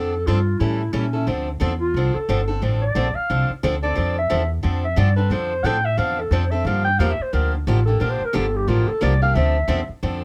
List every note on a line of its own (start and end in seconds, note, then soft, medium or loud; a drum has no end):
0.00 0.26 F2 medium
0.00 0.13 D3 medium
0.00 0.13 F3 medium
0.00 0.13 C4 medium
0.00 0.14 D4 medium
0.00 0.14 A4 medium
0.00 0.28 A4 loud
0.26 0.60 G2 medium
0.26 0.38 D3 medium
0.26 0.38 F3 medium
0.26 0.38 C4 loud
0.26 0.38 D4 medium
0.26 0.60 F4 medium
0.26 0.38 A4 loud
0.59 0.93 A2 medium
0.59 0.81 E3 medium
0.59 0.81 G3 medium
0.59 0.81 C#4 medium
0.59 0.94 E4 medium
0.59 0.81 E4 medium
0.59 0.81 A4 medium
0.93 1.27 A#2 medium
0.93 1.04 E3 medium
0.93 1.04 G3 loud
0.93 1.27 C#4 medium
0.93 1.05 C#4 medium
0.93 1.05 E4 medium
0.93 1.05 A4 medium
1.13 1.27 C#4 soft
1.13 1.27 E4 medium
1.13 1.26 A4 medium
1.27 1.60 D2 medium
1.27 1.48 D3 medium
1.27 1.48 F3 medium
1.27 1.48 C4 medium
1.27 1.48 D4 medium
1.27 1.48 A4 medium
1.60 1.94 E2 medium
1.60 1.72 D3 medium
1.60 1.72 F3 medium
1.60 1.72 C4 medium
1.60 1.72 D4 medium
1.60 1.72 A4 medium
1.80 2.16 F4 medium
1.94 2.13 C2 medium
1.94 2.16 D3 medium
1.94 2.16 F3 medium
1.94 2.16 C4 medium
1.94 2.16 D4 medium
1.94 2.16 A4 medium
2.14 2.49 A4 medium
2.14 muted upright bass stroke soft
2.29 2.62 G1 medium
2.29 2.40 D3 medium
2.29 2.40 F3 medium
2.29 2.40 C4 loud
2.29 2.40 D4 medium
2.29 2.40 A4 loud
2.48 2.61 C4 soft
2.48 2.61 D4 soft
2.48 2.62 A4 medium
2.62 2.94 A1 medium
2.62 2.82 D3 medium
2.62 2.83 F3 medium
2.62 2.83 C4 medium
2.62 2.83 D4 medium
2.62 2.83 A4 medium
2.82 3.17 D5 medium
2.95 3.14 A#1 medium
2.95 3.07 D3 medium
2.95 3.07 F3 medium
2.95 3.07 C4 medium
2.95 3.07 D4 medium
2.95 3.07 A4 medium
3.15 3.49 F5 loud
3.15 muted upright bass stroke soft
3.30 3.49 C2 medium
3.30 3.50 D3 medium
3.30 3.50 F3 medium
3.30 3.50 C4 medium
3.30 3.50 D4 medium
3.30 3.50 A4 medium
3.50 muted upright bass stroke soft
3.63 3.96 D2 medium
3.63 3.74 D3 medium
3.63 3.74 F3 medium
3.63 3.75 C4 loud
3.63 3.75 D4 loud
3.63 3.75 A4 loud
3.83 3.94 C4 soft
3.83 3.95 D4 medium
3.83 3.95 A4 medium
3.83 4.15 D5 medium
3.95 4.30 F2 medium
3.95 4.17 D3 medium
3.95 4.17 F3 medium
3.95 4.17 C4 medium
3.95 4.17 D4 medium
3.95 4.17 A4 medium
4.19 4.49 E5 loud
4.30 4.64 E2 medium
4.30 4.41 D3 medium
4.30 4.41 F3 medium
4.30 4.41 C4 medium
4.30 4.41 D4 medium
4.30 4.41 A4 loud
4.63 4.96 F2 medium
4.63 4.84 D3 medium
4.63 4.84 F3 medium
4.63 4.84 C4 medium
4.63 4.84 D4 medium
4.63 4.84 A4 medium
4.85 5.00 E5 medium
4.96 5.29 G2 medium
4.96 5.08 D3 medium
4.96 5.08 F3 medium
4.96 5.08 C4 medium
4.96 5.09 D4 loud
4.96 5.09 A4 loud
4.96 5.15 D5 medium
5.16 5.30 C4 soft
5.16 5.31 D4 medium
5.16 5.31 A4 medium
5.16 5.33 B4 medium
5.30 5.63 F2 medium
5.30 5.52 D3 medium
5.30 5.52 F3 medium
5.30 5.52 C4 medium
5.30 5.52 D4 medium
5.30 5.52 A4 medium
5.30 5.66 C5 medium
5.64 5.97 A2 medium
5.64 5.76 D3 medium
5.64 5.76 F3 medium
5.64 5.76 C4 medium
5.64 5.76 D4 medium
5.64 5.77 A4 loud
5.64 5.87 G5 loud
5.85 5.99 E5 medium
5.97 6.30 E2 medium
5.97 6.18 D3 medium
5.97 6.19 F3 medium
5.97 6.19 C4 medium
5.97 6.19 D4 medium
5.97 6.19 A4 medium
5.97 6.21 F5 loud
6.20 6.35 A4 medium
6.31 6.64 F2 medium
6.31 6.43 D3 medium
6.31 6.43 F3 medium
6.31 6.43 C4 loud
6.31 6.44 D4 loud
6.31 6.44 A4 loud
6.31 6.52 C5 medium
6.51 6.66 C4 soft
6.51 6.65 D4 soft
6.51 6.65 A4 medium
6.51 6.68 E5 medium
6.65 6.98 G2 medium
6.65 6.87 D3 medium
6.65 6.87 F3 medium
6.65 6.87 A#3 medium
6.65 6.87 D4 medium
6.65 6.87 G4 medium
6.65 6.84 F5 medium
6.84 7.00 G5 loud
6.99 7.18 E2 medium
6.99 7.11 D3 medium
6.99 7.11 F3 medium
6.99 7.11 A#3 loud
6.99 7.11 D4 loud
6.99 7.11 G4 loud
6.99 7.12 F5 medium
7.11 7.24 E5 medium
7.19 7.35 C5 medium
7.19 muted upright bass stroke soft
7.33 7.66 D2 medium
7.33 7.53 D3 medium
7.33 7.54 F3 medium
7.33 7.54 A#3 medium
7.33 7.54 D4 medium
7.33 7.54 G4 medium
7.33 7.53 A#4 medium
7.54 7.69 D4 soft
7.67 8.00 A1 medium
7.67 7.78 D3 medium
7.67 7.78 F3 medium
7.67 7.78 A#3 medium
7.67 7.79 D4 loud
7.67 7.85 F4 medium
7.67 7.79 G4 loud
7.86 8.00 A#3 soft
7.86 8.00 D4 medium
7.86 8.00 G4 medium
7.86 8.03 A4 medium
8.00 8.20 A#1 medium
8.00 8.21 D3 medium
8.00 8.21 F3 medium
8.00 8.21 A#3 medium
8.00 8.21 D4 medium
8.00 8.21 G4 medium
8.00 8.12 A#4 medium
8.10 8.27 C5 medium
8.21 muted upright bass stroke soft
8.25 8.37 A#4 medium
8.33 8.67 G1 medium
8.33 8.45 D3 medium
8.33 8.45 F3 loud
8.33 8.45 A#3 medium
8.33 8.45 D4 loud
8.33 8.45 G4 loud
8.33 8.57 A4 medium
8.56 8.70 G4 medium
8.68 8.87 A1 medium
8.68 8.88 D3 medium
8.68 8.88 F3 medium
8.68 8.89 A#3 medium
8.68 8.89 D4 medium
8.68 8.89 F4 medium
8.68 8.89 G4 medium
8.88 9.04 A4 medium
8.88 muted upright bass stroke soft
9.01 9.35 C2 medium
9.01 9.12 D3 medium
9.01 9.12 F3 medium
9.01 9.12 A#3 medium
9.01 9.13 D4 medium
9.01 9.13 G4 loud
9.01 9.22 D5 medium
9.22 9.36 A#3 medium
9.22 9.35 D4 medium
9.22 9.35 G4 medium
9.22 9.36 F5 loud
9.35 9.68 D2 medium
9.35 9.56 D3 medium
9.35 9.56 F3 medium
9.35 9.56 C4 medium
9.35 9.56 D4 medium
9.35 9.56 A4 medium
9.35 9.89 E5 medium
9.68 9.87 E2 loud
9.68 9.79 D3 medium
9.68 9.80 F3 loud
9.68 9.80 C4 medium
9.68 9.80 D4 loud
9.68 9.80 A4 medium
9.89 muted upright bass stroke soft
10.03 10.24 F2 medium
10.03 10.23 D3 medium
10.03 10.23 F3 medium
10.03 10.23 C4 medium
10.03 10.23 D4 medium
10.03 10.23 A4 medium